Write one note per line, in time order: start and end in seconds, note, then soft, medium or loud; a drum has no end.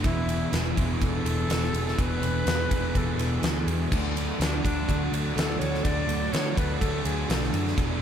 0.03 0.43 E1 loud
0.03 0.52 E2 loud
0.03 0.29 B2 medium
0.03 0.51 E3 loud
0.03 0.30 B3 loud
0.03 0.28 D4 loud
0.03 0.73 E4 loud
0.03 0.26 G#4 loud
0.03 kick loud
0.03 ride loud
0.27 0.53 B2 medium
0.27 0.55 E3 medium
0.27 0.52 B3 medium
0.27 0.53 D4 medium
0.27 0.53 G#4 medium
0.27 ride medium
0.51 0.72 E1 medium
0.51 0.78 E2 medium
0.51 0.76 B2 medium
0.51 0.77 E3 medium
0.51 0.77 B3 medium
0.51 0.76 D4 medium
0.51 0.74 G#4 medium
0.51 snare loud
0.51 ride loud
0.55 0.75 E3 medium
0.75 0.96 E1 medium
0.75 0.99 E2 medium
0.75 1.00 B2 medium
0.75 0.98 E3 medium
0.75 0.99 B3 medium
0.75 1.01 D4 medium
0.75 1.01 G#4 loud
0.75 kick loud
0.75 ride medium
0.99 1.21 E1 medium
0.99 1.26 E2 medium
0.99 1.25 B2 medium
0.99 1.47 E3 medium
0.99 1.26 B3 medium
0.99 1.25 D4 medium
0.99 1.23 G#4 medium
0.99 2.02 A4 loud
0.99 kick medium
0.99 ride loud
1.24 1.44 E1 medium
1.24 1.48 E2 medium
1.24 1.49 B2 medium
1.24 1.51 E3 medium
1.24 1.48 B3 medium
1.24 1.50 D4 medium
1.24 1.50 G#4 medium
1.24 ride medium
1.48 1.69 E1 medium
1.48 1.96 E2 medium
1.48 1.75 B2 medium
1.48 1.95 E3 medium
1.48 1.73 B3 medium
1.48 1.72 D4 loud
1.48 1.70 G#4 loud
1.48 snare loud
1.48 ride loud
1.63 snare soft
1.71 1.93 E1 medium
1.71 1.99 E3 medium
1.71 1.96 B3 medium
1.71 1.98 D4 medium
1.71 1.98 G#4 medium
1.71 ride medium
1.76 1.97 B2 medium
1.88 snare soft
1.96 2.18 E1 medium
1.96 2.44 E2 medium
1.96 2.23 B2 loud
1.96 2.44 E3 loud
1.96 2.22 B3 loud
1.96 2.21 D4 loud
1.96 2.19 G#4 loud
1.96 kick loud
1.96 ride loud
2.00 2.69 E3 medium
2.00 2.99 B4 loud
2.20 2.41 E1 medium
2.20 2.47 E3 medium
2.20 2.45 B3 medium
2.20 2.47 D4 medium
2.20 2.47 G#4 medium
2.20 ride medium
2.24 2.45 B2 medium
2.45 2.71 E2 medium
2.45 2.66 E2 medium
2.45 2.70 B2 medium
2.45 2.71 E3 medium
2.45 2.70 B3 medium
2.45 2.70 D4 medium
2.45 2.68 G#4 medium
2.45 snare loud
2.45 ride loud
2.69 2.90 E1 loud
2.69 2.93 E2 medium
2.69 2.94 B2 medium
2.69 2.93 E3 medium
2.69 2.94 B3 medium
2.69 2.96 D4 loud
2.69 2.96 G#4 loud
2.69 kick loud
2.69 ride medium
2.94 3.14 E1 medium
2.94 3.20 E2 medium
2.94 3.19 B2 medium
2.94 3.40 E3 medium
2.94 3.20 B3 medium
2.94 3.19 D4 medium
2.94 3.17 G#4 medium
2.94 3.69 A4 loud
2.94 kick medium
2.94 ride medium
3.18 3.38 E1 medium
3.18 3.41 E2 medium
3.18 3.42 B2 medium
3.18 3.44 E3 medium
3.18 3.41 B3 medium
3.18 3.43 D4 medium
3.18 3.43 G#4 medium
3.18 ride medium
3.42 3.62 D2 loud
3.42 3.90 E2 medium
3.42 3.68 B2 medium
3.42 3.89 E3 medium
3.42 3.68 B3 loud
3.42 3.68 D4 loud
3.42 3.65 G#4 medium
3.42 snare loud
3.42 ride loud
3.66 3.86 E2 medium
3.66 3.91 B2 medium
3.66 3.90 E3 medium
3.66 3.91 B3 medium
3.66 3.93 D4 medium
3.66 3.90 G#4 medium
3.66 ride medium
3.91 4.30 D2 loud
3.91 4.66 D3 loud
3.91 4.38 F#3 loud
3.91 4.18 A3 loud
3.91 4.17 D4 loud
3.91 7.74 F#4 medium
3.91 4.15 F#4 loud
3.91 7.74 A4 medium
3.91 8.02 D5 medium
3.91 7.75 A5 medium
3.91 kick loud
3.91 crash loud
4.16 4.40 A3 medium
4.16 4.41 D4 medium
4.16 4.42 F#4 medium
4.16 ride medium
4.39 4.59 D2 medium
4.39 4.65 D3 medium
4.39 4.66 F#3 medium
4.39 4.65 A3 medium
4.39 4.62 D4 loud
4.39 4.64 D4 medium
4.39 4.63 F#4 medium
4.39 snare loud
4.39 ride loud
4.64 4.83 D2 medium
4.64 5.14 D3 medium
4.64 4.87 F#3 medium
4.64 4.89 A3 medium
4.64 5.09 D4 loud
4.64 4.89 D4 medium
4.64 4.89 F#4 loud
4.64 kick loud
4.64 ride medium
4.87 5.08 D2 loud
4.87 5.13 D3 medium
4.87 5.35 F#3 medium
4.87 5.14 A3 medium
4.87 5.13 D4 medium
4.87 5.11 F#4 medium
4.87 kick medium
4.87 ride loud
5.12 5.32 D2 medium
5.12 5.34 D3 medium
5.12 5.36 A3 medium
5.12 5.37 D4 medium
5.12 5.37 F#4 medium
5.12 ride medium
5.35 5.56 D2 loud
5.35 5.81 D3 medium
5.35 5.82 F#3 loud
5.35 5.62 A3 loud
5.35 5.60 D4 loud
5.35 5.58 F#4 loud
5.35 5.60 A4 medium
5.35 ride loud
5.39 snare loud
5.58 5.80 D2 medium
5.58 5.84 A3 medium
5.58 5.84 D4 medium
5.58 5.84 F#4 medium
5.58 5.84 C#5 loud
5.58 ride medium
5.74 snare soft
5.82 6.04 D2 medium
5.82 6.32 D3 medium
5.82 6.30 F#3 loud
5.82 6.10 A3 loud
5.82 6.08 D4 loud
5.82 6.06 F#4 loud
5.82 6.34 D5 loud
5.82 kick loud
5.82 ride loud
6.07 6.27 D2 medium
6.07 6.32 A3 medium
6.07 6.33 D4 medium
6.07 6.33 F#4 medium
6.07 ride medium
6.32 6.58 D3 medium
6.32 6.52 D3 medium
6.32 6.57 F#3 medium
6.32 6.57 A3 medium
6.32 6.56 D4 medium
6.32 6.54 F#4 medium
6.32 6.59 C#5 loud
6.32 snare loud
6.32 ride loud
6.55 6.77 D2 loud
6.55 7.06 D3 medium
6.55 6.78 F#3 medium
6.55 6.80 A3 medium
6.55 6.81 D4 loud
6.55 6.81 F#4 medium
6.55 6.79 B4 loud
6.55 kick loud
6.55 ride medium
6.80 7.00 D2 medium
6.80 7.06 D3 medium
6.80 7.27 F#3 medium
6.80 7.06 A3 medium
6.80 7.05 D4 medium
6.80 7.02 F#4 medium
6.80 7.06 A4 loud
6.80 kick medium
6.80 ride loud
7.04 7.24 D2 medium
7.04 7.27 D3 medium
7.04 7.29 A3 medium
7.04 7.29 D4 medium
7.04 7.29 F#4 medium
7.04 7.31 G#4 medium
7.04 ride medium
7.28 7.49 B1 medium
7.28 7.75 D3 medium
7.28 7.75 F#3 loud
7.28 7.54 A3 loud
7.28 7.53 D4 loud
7.28 7.51 F#4 loud
7.28 7.66 A4 medium
7.28 snare loud
7.28 ride loud
7.43 snare soft
7.52 7.73 F#2 medium
7.52 7.77 A3 medium
7.52 7.78 D4 medium
7.52 7.75 F#4 medium
7.52 ride medium
7.67 snare soft
7.76 8.02 E1 medium
7.76 8.02 E2 medium
7.76 8.02 B2 medium
7.76 8.02 E3 loud
7.76 8.02 B3 loud
7.76 8.01 D4 loud
7.76 7.99 G#4 loud
7.76 8.02 E5 medium
7.76 8.02 B5 medium
7.76 kick loud
7.76 ride loud
7.80 8.02 E3 loud